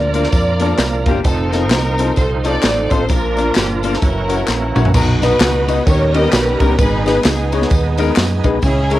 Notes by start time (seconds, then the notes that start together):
Already playing: D2 A#2 F3 A#3 D4 F4 A#4 D5
0.14 A#3 D4 F4 A#4, closed hi-hat, tambourine
0.24 snare
0.32 F2, kick, closed hi-hat, tambourine
0.60 A#3 D4 F4 A4 D5, closed hi-hat, tambourine
0.78 C2 F5, snare, clap, closed hi-hat, tambourine
1.06 G1 A#3 D4 F4 G4, kick, closed hi-hat, tambourine
1.24 F1 F3 C4 D#4 A4 C5, kick, closed hi-hat, tambourine
1.52 C4 D#4 F4 A4 A#4, snare, closed hi-hat, tambourine
1.71 C2, snare, clap, closed hi-hat, tambourine
1.98 C4 D#4 F4 A4, closed hi-hat, tambourine
2.16 C2 D#4 A4 C5, kick, closed hi-hat, tambourine
2.44 C4 D#4 F4 A4 D5, closed hi-hat, tambourine
2.63 A1, snare, clap, closed hi-hat, tambourine
2.90 A1 C4 D#4 F4 A4 C5, kick, closed hi-hat, tambourine
3.09 A#1 A#2 F3 A#3 D4 F4 A#4, kick, closed hi-hat, tambourine
3.37 A#3 D4 F4 A#4, closed hi-hat, tambourine
3.55 G1 G4, snare, clap, closed hi-hat, tambourine
3.82 A#3 D4 F4 A4 A#4, closed hi-hat, tambourine
3.94 snare
4.01 F#1 E3 A#3 C#4 E4 F#4 A#4, kick, closed hi-hat, tambourine
4.28 C#4 E4 F#4 A#4, closed hi-hat, tambourine
4.48 A#1, snare, clap, tambourine
4.75 A#1 C#4 E4 F#4 C#5, mid tom, tambourine
4.85 floor tom
4.94 B1 B2 B3 D#4 F#4 A#4, kick, crash, tambourine
5.22 B3 D#4 F#4 B4 D#5, snare, ride, tambourine
5.40 C#2, snare, clap, ride, tambourine
5.68 B3 D#4 F#4 B4 D#5, ride, tambourine
5.86 D#2 D#3 G3 B3 C#4 D#4 G4 A4 A#4 C#5, kick, ride, tambourine
5.92 A#4
6.14 B3 C#4 D#4 G4 A#4 D#5, ride, tambourine
6.32 B1 B4, snare, clap, ride, tambourine
6.60 C#2 B3 C#4 D#4 G4 A#4, kick, ride, tambourine
6.79 G#1 G#2 G#3 B3 D#4 G#4 B4, kick, ride, tambourine
7.06 G#3 B3 D#4 G#4 B4, snare, ride, tambourine
7.24 C#2 B3 D#4 G#4, snare, clap, ride, tambourine
7.52 G#3 B3 D#4 G#4 C#5, ride, tambourine
7.62 snare
7.70 D#2, kick, ride, tambourine
7.97 G#3 B3 D#4 G#4 A#4, ride, tambourine
8.16 F#2, snare, clap, ride, tambourine
8.44 B1 G#3 B3 D#4 G#4 B4, kick, ride, tambourine
8.62 C#2 C#3 G#3 C#4 E4 G#4, kick, ride, tambourine
8.90 G#3 C#4 E4 G#4 A#4 C#5, ride, tambourine